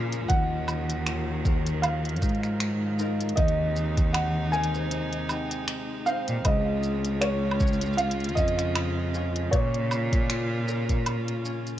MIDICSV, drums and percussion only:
0, 0, Header, 1, 2, 480
1, 0, Start_track
1, 0, Tempo, 769231
1, 187, Time_signature, 4, 2, 24, 8
1, 7360, End_track
2, 0, Start_track
2, 0, Title_t, "Drums"
2, 78, Note_on_c, 9, 42, 41
2, 79, Note_on_c, 9, 82, 43
2, 140, Note_off_c, 9, 42, 0
2, 142, Note_off_c, 9, 82, 0
2, 185, Note_on_c, 9, 42, 55
2, 186, Note_on_c, 9, 36, 125
2, 187, Note_on_c, 9, 82, 33
2, 247, Note_off_c, 9, 42, 0
2, 249, Note_off_c, 9, 36, 0
2, 249, Note_off_c, 9, 82, 0
2, 424, Note_on_c, 9, 77, 79
2, 426, Note_on_c, 9, 82, 83
2, 486, Note_off_c, 9, 77, 0
2, 488, Note_off_c, 9, 82, 0
2, 559, Note_on_c, 9, 42, 44
2, 561, Note_on_c, 9, 82, 48
2, 622, Note_off_c, 9, 42, 0
2, 623, Note_off_c, 9, 82, 0
2, 665, Note_on_c, 9, 26, 92
2, 665, Note_on_c, 9, 42, 52
2, 666, Note_on_c, 9, 82, 33
2, 727, Note_off_c, 9, 26, 0
2, 727, Note_off_c, 9, 42, 0
2, 729, Note_off_c, 9, 82, 0
2, 906, Note_on_c, 9, 82, 82
2, 907, Note_on_c, 9, 36, 107
2, 969, Note_off_c, 9, 36, 0
2, 969, Note_off_c, 9, 82, 0
2, 1038, Note_on_c, 9, 42, 43
2, 1040, Note_on_c, 9, 82, 44
2, 1101, Note_off_c, 9, 42, 0
2, 1103, Note_off_c, 9, 82, 0
2, 1145, Note_on_c, 9, 42, 55
2, 1145, Note_on_c, 9, 77, 82
2, 1146, Note_on_c, 9, 82, 34
2, 1207, Note_off_c, 9, 42, 0
2, 1207, Note_off_c, 9, 77, 0
2, 1209, Note_off_c, 9, 82, 0
2, 1280, Note_on_c, 9, 42, 28
2, 1305, Note_off_c, 9, 42, 0
2, 1305, Note_on_c, 9, 42, 23
2, 1350, Note_off_c, 9, 42, 0
2, 1350, Note_on_c, 9, 42, 21
2, 1385, Note_off_c, 9, 42, 0
2, 1385, Note_on_c, 9, 42, 15
2, 1387, Note_on_c, 9, 36, 68
2, 1387, Note_on_c, 9, 82, 78
2, 1430, Note_off_c, 9, 42, 0
2, 1430, Note_on_c, 9, 42, 12
2, 1449, Note_off_c, 9, 36, 0
2, 1449, Note_off_c, 9, 82, 0
2, 1464, Note_off_c, 9, 42, 0
2, 1464, Note_on_c, 9, 42, 10
2, 1519, Note_on_c, 9, 26, 29
2, 1521, Note_on_c, 9, 82, 43
2, 1527, Note_off_c, 9, 42, 0
2, 1581, Note_off_c, 9, 26, 0
2, 1583, Note_off_c, 9, 82, 0
2, 1624, Note_on_c, 9, 26, 97
2, 1624, Note_on_c, 9, 42, 59
2, 1626, Note_on_c, 9, 82, 34
2, 1687, Note_off_c, 9, 26, 0
2, 1687, Note_off_c, 9, 42, 0
2, 1688, Note_off_c, 9, 82, 0
2, 1866, Note_on_c, 9, 82, 83
2, 1928, Note_off_c, 9, 82, 0
2, 2000, Note_on_c, 9, 42, 37
2, 2002, Note_on_c, 9, 82, 43
2, 2053, Note_off_c, 9, 42, 0
2, 2053, Note_on_c, 9, 42, 31
2, 2064, Note_off_c, 9, 82, 0
2, 2104, Note_off_c, 9, 42, 0
2, 2104, Note_on_c, 9, 42, 57
2, 2106, Note_on_c, 9, 36, 109
2, 2106, Note_on_c, 9, 82, 31
2, 2166, Note_off_c, 9, 42, 0
2, 2168, Note_off_c, 9, 82, 0
2, 2169, Note_off_c, 9, 36, 0
2, 2173, Note_on_c, 9, 42, 24
2, 2235, Note_off_c, 9, 42, 0
2, 2347, Note_on_c, 9, 82, 76
2, 2410, Note_off_c, 9, 82, 0
2, 2480, Note_on_c, 9, 42, 47
2, 2481, Note_on_c, 9, 36, 104
2, 2482, Note_on_c, 9, 82, 44
2, 2542, Note_off_c, 9, 42, 0
2, 2543, Note_off_c, 9, 36, 0
2, 2544, Note_off_c, 9, 82, 0
2, 2586, Note_on_c, 9, 26, 96
2, 2586, Note_on_c, 9, 42, 57
2, 2586, Note_on_c, 9, 77, 83
2, 2588, Note_on_c, 9, 82, 34
2, 2648, Note_off_c, 9, 26, 0
2, 2648, Note_off_c, 9, 42, 0
2, 2648, Note_off_c, 9, 77, 0
2, 2650, Note_off_c, 9, 82, 0
2, 2828, Note_on_c, 9, 82, 74
2, 2891, Note_off_c, 9, 82, 0
2, 2892, Note_on_c, 9, 42, 43
2, 2955, Note_off_c, 9, 42, 0
2, 2961, Note_on_c, 9, 82, 43
2, 3023, Note_off_c, 9, 82, 0
2, 3065, Note_on_c, 9, 42, 56
2, 3067, Note_on_c, 9, 82, 34
2, 3128, Note_off_c, 9, 42, 0
2, 3129, Note_off_c, 9, 82, 0
2, 3198, Note_on_c, 9, 42, 33
2, 3261, Note_off_c, 9, 42, 0
2, 3302, Note_on_c, 9, 77, 78
2, 3304, Note_on_c, 9, 82, 73
2, 3365, Note_off_c, 9, 77, 0
2, 3367, Note_off_c, 9, 82, 0
2, 3439, Note_on_c, 9, 42, 45
2, 3441, Note_on_c, 9, 82, 40
2, 3501, Note_off_c, 9, 42, 0
2, 3503, Note_off_c, 9, 82, 0
2, 3543, Note_on_c, 9, 26, 100
2, 3543, Note_on_c, 9, 42, 59
2, 3545, Note_on_c, 9, 82, 33
2, 3605, Note_off_c, 9, 26, 0
2, 3605, Note_off_c, 9, 42, 0
2, 3607, Note_off_c, 9, 82, 0
2, 3784, Note_on_c, 9, 82, 75
2, 3847, Note_off_c, 9, 82, 0
2, 3917, Note_on_c, 9, 42, 42
2, 3919, Note_on_c, 9, 82, 40
2, 3980, Note_off_c, 9, 42, 0
2, 3982, Note_off_c, 9, 82, 0
2, 4023, Note_on_c, 9, 42, 60
2, 4023, Note_on_c, 9, 77, 80
2, 4025, Note_on_c, 9, 82, 33
2, 4026, Note_on_c, 9, 36, 114
2, 4086, Note_off_c, 9, 42, 0
2, 4086, Note_off_c, 9, 77, 0
2, 4088, Note_off_c, 9, 82, 0
2, 4089, Note_off_c, 9, 36, 0
2, 4263, Note_on_c, 9, 82, 72
2, 4325, Note_off_c, 9, 82, 0
2, 4396, Note_on_c, 9, 42, 48
2, 4398, Note_on_c, 9, 82, 44
2, 4459, Note_off_c, 9, 42, 0
2, 4461, Note_off_c, 9, 82, 0
2, 4503, Note_on_c, 9, 26, 97
2, 4503, Note_on_c, 9, 42, 60
2, 4505, Note_on_c, 9, 82, 35
2, 4565, Note_off_c, 9, 26, 0
2, 4565, Note_off_c, 9, 42, 0
2, 4567, Note_off_c, 9, 82, 0
2, 4689, Note_on_c, 9, 77, 79
2, 4743, Note_on_c, 9, 82, 74
2, 4745, Note_on_c, 9, 36, 99
2, 4751, Note_off_c, 9, 77, 0
2, 4787, Note_off_c, 9, 82, 0
2, 4787, Note_on_c, 9, 82, 62
2, 4808, Note_off_c, 9, 36, 0
2, 4823, Note_off_c, 9, 82, 0
2, 4823, Note_on_c, 9, 82, 48
2, 4876, Note_on_c, 9, 42, 45
2, 4877, Note_off_c, 9, 82, 0
2, 4877, Note_on_c, 9, 82, 38
2, 4903, Note_off_c, 9, 82, 0
2, 4903, Note_on_c, 9, 82, 32
2, 4938, Note_off_c, 9, 42, 0
2, 4949, Note_off_c, 9, 82, 0
2, 4949, Note_on_c, 9, 82, 26
2, 4981, Note_on_c, 9, 42, 58
2, 4983, Note_off_c, 9, 82, 0
2, 4983, Note_on_c, 9, 82, 42
2, 5044, Note_off_c, 9, 42, 0
2, 5045, Note_off_c, 9, 82, 0
2, 5061, Note_on_c, 9, 42, 45
2, 5118, Note_off_c, 9, 42, 0
2, 5118, Note_on_c, 9, 42, 14
2, 5143, Note_off_c, 9, 42, 0
2, 5143, Note_on_c, 9, 42, 39
2, 5172, Note_off_c, 9, 42, 0
2, 5172, Note_on_c, 9, 42, 20
2, 5222, Note_off_c, 9, 42, 0
2, 5222, Note_on_c, 9, 42, 23
2, 5224, Note_on_c, 9, 82, 72
2, 5225, Note_on_c, 9, 36, 64
2, 5285, Note_off_c, 9, 42, 0
2, 5287, Note_off_c, 9, 36, 0
2, 5287, Note_off_c, 9, 82, 0
2, 5291, Note_on_c, 9, 42, 26
2, 5353, Note_off_c, 9, 42, 0
2, 5358, Note_on_c, 9, 26, 31
2, 5358, Note_on_c, 9, 42, 49
2, 5360, Note_on_c, 9, 82, 46
2, 5421, Note_off_c, 9, 26, 0
2, 5421, Note_off_c, 9, 42, 0
2, 5423, Note_off_c, 9, 82, 0
2, 5463, Note_on_c, 9, 26, 101
2, 5463, Note_on_c, 9, 42, 59
2, 5463, Note_on_c, 9, 77, 88
2, 5465, Note_on_c, 9, 82, 33
2, 5525, Note_off_c, 9, 26, 0
2, 5525, Note_off_c, 9, 42, 0
2, 5525, Note_off_c, 9, 77, 0
2, 5527, Note_off_c, 9, 82, 0
2, 5705, Note_on_c, 9, 82, 69
2, 5767, Note_off_c, 9, 82, 0
2, 5839, Note_on_c, 9, 42, 44
2, 5902, Note_off_c, 9, 42, 0
2, 5945, Note_on_c, 9, 36, 105
2, 5945, Note_on_c, 9, 42, 59
2, 5947, Note_on_c, 9, 82, 33
2, 6008, Note_off_c, 9, 36, 0
2, 6008, Note_off_c, 9, 42, 0
2, 6010, Note_off_c, 9, 82, 0
2, 6080, Note_on_c, 9, 42, 30
2, 6142, Note_off_c, 9, 42, 0
2, 6185, Note_on_c, 9, 77, 79
2, 6186, Note_on_c, 9, 82, 76
2, 6247, Note_off_c, 9, 77, 0
2, 6249, Note_off_c, 9, 82, 0
2, 6319, Note_on_c, 9, 36, 102
2, 6320, Note_on_c, 9, 42, 50
2, 6321, Note_on_c, 9, 82, 45
2, 6382, Note_off_c, 9, 36, 0
2, 6382, Note_off_c, 9, 42, 0
2, 6384, Note_off_c, 9, 82, 0
2, 6425, Note_on_c, 9, 26, 99
2, 6425, Note_on_c, 9, 42, 59
2, 6427, Note_on_c, 9, 82, 34
2, 6488, Note_off_c, 9, 26, 0
2, 6488, Note_off_c, 9, 42, 0
2, 6490, Note_off_c, 9, 82, 0
2, 6665, Note_on_c, 9, 82, 77
2, 6728, Note_off_c, 9, 82, 0
2, 6797, Note_on_c, 9, 42, 43
2, 6799, Note_on_c, 9, 36, 61
2, 6799, Note_on_c, 9, 82, 39
2, 6860, Note_off_c, 9, 42, 0
2, 6862, Note_off_c, 9, 36, 0
2, 6862, Note_off_c, 9, 82, 0
2, 6903, Note_on_c, 9, 42, 63
2, 6903, Note_on_c, 9, 77, 86
2, 6905, Note_on_c, 9, 82, 33
2, 6965, Note_off_c, 9, 42, 0
2, 6965, Note_off_c, 9, 77, 0
2, 6967, Note_off_c, 9, 82, 0
2, 7039, Note_on_c, 9, 42, 34
2, 7102, Note_off_c, 9, 42, 0
2, 7146, Note_on_c, 9, 82, 81
2, 7208, Note_off_c, 9, 82, 0
2, 7280, Note_on_c, 9, 42, 21
2, 7282, Note_on_c, 9, 82, 45
2, 7343, Note_off_c, 9, 42, 0
2, 7345, Note_off_c, 9, 82, 0
2, 7360, End_track
0, 0, End_of_file